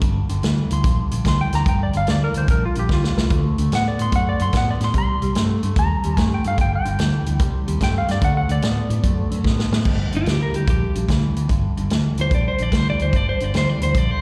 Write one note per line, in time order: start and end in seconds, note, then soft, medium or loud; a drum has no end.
0.00 0.19 G1 loud
0.00 0.26 G2 medium
0.00 0.27 D3 medium
0.00 0.13 G4 medium
0.00 kick loud
0.00 closed hi-hat medium
0.29 0.38 G1 medium
0.29 0.41 G2 medium
0.29 0.42 D3 medium
0.29 closed hi-hat medium
0.42 0.60 D2 medium
0.42 0.68 G2 medium
0.42 0.68 E3 medium
0.42 snare loud
0.42 closed hi-hat medium
0.70 0.79 D2 medium
0.70 0.82 G2 medium
0.70 0.83 E3 medium
0.70 0.98 C6 loud
0.70 closed hi-hat medium
0.84 1.01 A#1 medium
0.84 1.09 G2 medium
0.84 1.09 D3 medium
0.84 kick loud
0.84 closed hi-hat medium
1.11 1.20 A#1 medium
1.11 1.24 G2 medium
1.11 1.24 D3 medium
1.11 closed hi-hat medium
1.25 1.42 D2 medium
1.25 1.50 G2 medium
1.25 1.50 E3 medium
1.25 1.40 C6 medium
1.25 kick medium
1.25 snare loud
1.25 closed hi-hat medium
1.41 1.53 G5 medium
1.53 1.61 D2 medium
1.53 1.65 G2 medium
1.53 1.65 E3 medium
1.53 1.67 A#5 medium
1.53 snare soft
1.53 closed hi-hat medium
1.66 1.83 G1 loud
1.66 1.91 G2 medium
1.66 1.92 D3 medium
1.66 1.81 G5 medium
1.66 kick loud
1.66 closed hi-hat medium
1.83 1.95 D5 medium
1.93 2.03 G1 medium
1.93 2.06 G2 medium
1.93 2.07 D3 medium
1.93 2.09 F5 medium
1.93 closed hi-hat medium
2.07 2.25 D2 medium
2.07 2.33 G2 medium
2.07 2.33 E3 medium
2.07 2.22 D5 medium
2.07 snare medium
2.07 closed hi-hat medium
2.24 2.36 A#4 medium
2.34 2.44 D2 medium
2.34 2.47 G2 medium
2.34 2.48 E3 medium
2.34 2.50 C5 medium
2.34 closed hi-hat medium
2.48 2.65 A#1 medium
2.48 2.74 G2 medium
2.48 2.74 D3 medium
2.48 2.63 A#4 medium
2.48 kick loud
2.48 closed hi-hat medium
2.65 2.77 F4 medium
2.75 2.84 A#1 medium
2.75 2.89 G2 medium
2.75 2.89 D3 medium
2.75 closed hi-hat medium
2.79 2.91 G4 medium
2.89 3.06 D2 medium
2.89 3.14 G2 medium
2.89 3.15 E3 medium
2.89 kick medium
2.89 snare medium
2.93 3.05 F4 medium
3.04 3.45 F4 medium
3.04 snare medium
3.17 3.25 C2 medium
3.17 3.30 G2 medium
3.17 3.30 E3 medium
3.17 snare medium
3.30 3.47 D2 loud
3.30 3.55 D3 medium
3.30 3.56 A3 medium
3.30 kick loud
3.30 closed hi-hat medium
3.58 3.66 D2 medium
3.58 3.71 D3 medium
3.58 3.71 A3 medium
3.58 closed hi-hat medium
3.72 3.88 A2 medium
3.72 3.97 D3 medium
3.72 3.97 B3 medium
3.72 3.87 F#5 loud
3.72 snare medium
3.72 closed hi-hat medium
3.88 4.00 D5 medium
3.99 4.07 A2 medium
3.99 4.11 D3 medium
3.99 4.12 B3 medium
3.99 4.14 C6 medium
3.99 closed hi-hat medium
4.12 4.29 F#2 medium
4.12 4.37 D3 medium
4.12 4.38 A3 medium
4.12 4.27 F#5 loud
4.12 kick loud
4.12 closed hi-hat medium
4.29 4.41 D5 medium
4.39 4.49 F#2 medium
4.39 4.52 D3 medium
4.39 4.52 A3 medium
4.39 4.54 C6 loud
4.39 closed hi-hat medium
4.53 4.70 A2 medium
4.53 4.78 D3 medium
4.53 4.78 B3 medium
4.53 kick medium
4.53 snare loud
4.53 closed hi-hat medium
4.57 4.69 F#5 medium
4.71 4.82 D5 medium
4.81 4.89 A2 medium
4.81 4.93 D3 medium
4.81 4.93 B3 medium
4.81 4.96 C6 medium
4.81 snare soft
4.81 closed hi-hat medium
4.94 5.11 C2 loud
4.94 5.19 C3 medium
4.94 5.20 G3 medium
4.94 kick loud
4.94 closed hi-hat medium
4.98 5.36 C6 loud
5.22 5.30 C2 medium
5.22 5.34 C3 medium
5.22 5.34 G3 medium
5.22 closed hi-hat soft
5.35 5.52 G2 medium
5.35 5.60 C3 medium
5.35 5.60 A3 medium
5.35 snare medium
5.35 closed hi-hat medium
5.63 5.71 G2 medium
5.63 5.75 C3 medium
5.63 5.76 A3 medium
5.63 closed hi-hat medium
5.76 5.93 D#2 loud
5.76 6.01 C3 medium
5.76 6.02 G3 medium
5.76 6.19 A#5 loud
5.76 kick loud
5.76 closed hi-hat medium
6.04 6.13 D#2 medium
6.04 6.16 C3 medium
6.04 6.16 G3 medium
6.04 closed hi-hat medium
6.17 6.34 G2 medium
6.17 6.42 C3 medium
6.17 6.42 A3 medium
6.17 6.31 G#5 loud
6.17 kick medium
6.17 snare loud
6.17 closed hi-hat medium
6.34 6.46 G5 medium
6.44 6.53 G2 medium
6.44 6.57 C3 medium
6.44 6.57 A3 medium
6.44 6.60 F5 medium
6.44 closed hi-hat medium
6.58 6.75 G1 medium
6.58 6.83 G2 medium
6.58 6.83 D3 medium
6.58 6.73 G5 loud
6.58 kick loud
6.58 closed hi-hat medium
6.75 7.53 G5 medium
6.85 6.94 G1 medium
6.85 6.98 G2 medium
6.85 6.98 D3 medium
6.85 closed hi-hat medium
6.99 7.16 D2 medium
6.99 7.24 G2 medium
6.99 7.24 E3 medium
6.99 snare loud
6.99 closed hi-hat medium
7.26 7.35 D2 medium
7.26 7.39 G2 medium
7.26 7.39 E3 medium
7.26 closed hi-hat medium
7.39 7.57 C2 medium
7.39 7.65 C3 medium
7.39 7.65 G3 medium
7.39 kick loud
7.39 closed hi-hat medium
7.67 7.76 D#2 medium
7.67 7.79 C3 medium
7.67 7.80 G3 medium
7.67 closed hi-hat medium
7.81 7.98 G2 medium
7.81 8.06 C3 medium
7.81 8.06 A3 medium
7.81 7.96 G5 medium
7.81 kick medium
7.81 snare loud
7.81 closed hi-hat medium
7.98 8.10 F5 medium
8.08 8.17 G2 medium
8.08 8.21 C3 medium
8.08 8.21 A3 medium
8.08 8.23 D5 medium
8.08 snare soft
8.08 closed hi-hat medium
8.22 8.39 D2 loud
8.22 8.47 D3 medium
8.22 8.47 A3 medium
8.22 8.36 F#5 loud
8.22 kick loud
8.22 closed hi-hat medium
8.37 8.50 F#5 medium
8.49 8.58 D2 medium
8.49 8.62 D3 medium
8.49 8.62 A3 medium
8.49 8.64 D5 medium
8.49 closed hi-hat medium
8.62 8.80 A2 medium
8.62 8.88 D3 medium
8.62 8.88 B3 medium
8.62 9.43 D5 loud
8.62 snare loud
8.62 closed hi-hat medium
8.90 8.98 A2 loud
8.90 9.02 D3 medium
8.90 9.03 B3 medium
8.90 closed hi-hat medium
9.04 9.20 F#2 medium
9.04 9.29 D3 medium
9.04 9.29 A3 medium
9.04 kick loud
9.04 closed hi-hat medium
9.31 9.40 F#2 loud
9.31 9.43 D3 medium
9.31 9.44 A3 medium
9.31 closed hi-hat medium
9.44 9.61 A2 medium
9.44 9.70 D3 medium
9.44 9.70 B3 medium
9.44 kick medium
9.44 snare medium
9.59 snare medium
9.72 9.80 A2 medium
9.72 9.85 D3 medium
9.72 9.85 B3 medium
9.72 snare loud
9.85 10.02 G1 medium
9.85 10.11 G2 medium
9.85 10.11 D3 medium
9.85 kick medium
9.85 crash medium
10.12 10.21 G1 medium
10.12 10.25 G2 medium
10.12 10.26 D3 medium
10.12 closed hi-hat medium
10.17 10.28 F4 medium
10.26 10.43 D2 medium
10.26 10.52 G2 medium
10.26 10.52 E3 medium
10.26 10.42 G4 medium
10.26 snare medium
10.26 closed hi-hat medium
10.43 10.55 A#4 medium
10.54 10.62 D2 medium
10.54 10.66 G2 medium
10.54 10.67 E3 medium
10.54 10.68 G4 medium
10.54 closed hi-hat medium
10.67 10.84 A#1 medium
10.67 10.92 G2 medium
10.67 10.92 D3 medium
10.67 10.95 G4 medium
10.67 kick loud
10.67 closed hi-hat medium
10.95 11.04 A#1 medium
10.95 11.07 G2 medium
10.95 11.07 D3 medium
10.95 closed hi-hat medium
11.09 11.25 D2 medium
11.09 11.33 G2 medium
11.09 11.34 E3 medium
11.09 kick medium
11.09 snare loud
11.09 closed hi-hat medium
11.36 11.44 D2 medium
11.36 11.48 G2 medium
11.36 11.49 E3 medium
11.36 closed hi-hat medium
11.49 11.66 G1 medium
11.49 11.74 G2 medium
11.49 11.75 D3 medium
11.49 kick medium
11.49 closed hi-hat medium
11.77 11.85 G1 medium
11.77 11.89 G2 medium
11.77 11.89 D3 medium
11.77 closed hi-hat medium
11.90 12.08 D2 medium
11.90 12.15 G2 medium
11.90 12.16 E3 medium
11.90 snare medium
11.90 closed hi-hat medium
12.18 12.26 D2 medium
12.18 12.30 G2 medium
12.18 12.30 E3 medium
12.18 12.33 C5 medium
12.18 closed hi-hat medium
12.31 12.48 A#1 medium
12.31 12.56 G2 medium
12.31 12.56 D3 medium
12.31 12.46 D5 medium
12.31 kick loud
12.31 closed hi-hat medium
12.48 12.62 C5 medium
12.58 12.67 A#1 medium
12.58 12.71 G2 medium
12.58 12.71 D3 medium
12.58 closed hi-hat medium
12.62 12.75 D5 medium
12.72 12.89 D2 medium
12.72 12.97 G2 medium
12.72 12.97 E3 medium
12.72 12.87 C5 medium
12.72 kick medium
12.72 snare loud
12.72 closed hi-hat medium
12.90 13.01 D5 medium
12.99 13.08 D2 medium
12.99 13.12 G2 medium
12.99 13.12 E3 medium
12.99 13.16 C5 medium
12.99 closed hi-hat medium
13.13 13.30 G1 loud
13.13 13.38 G2 medium
13.13 13.38 D3 medium
13.13 13.28 D5 medium
13.13 kick loud
13.13 closed hi-hat medium
13.29 13.44 C5 medium
13.40 13.49 G1 medium
13.40 13.53 G2 medium
13.40 13.53 D3 medium
13.40 13.55 D5 medium
13.40 closed hi-hat soft
13.54 13.71 D2 medium
13.54 13.79 G2 medium
13.54 13.79 E3 medium
13.54 13.69 C5 medium
13.54 snare medium
13.54 closed hi-hat medium
13.69 13.82 D5 medium
13.81 13.90 D2 medium
13.81 13.93 G2 medium
13.81 13.94 E3 medium
13.81 13.98 C5 medium
13.81 closed hi-hat medium
13.95 14.11 A#1 medium
13.95 14.19 G2 medium
13.95 14.20 D3 medium
13.95 14.11 D5 medium
13.95 kick loud
13.95 closed hi-hat medium
14.11 14.21 C5 medium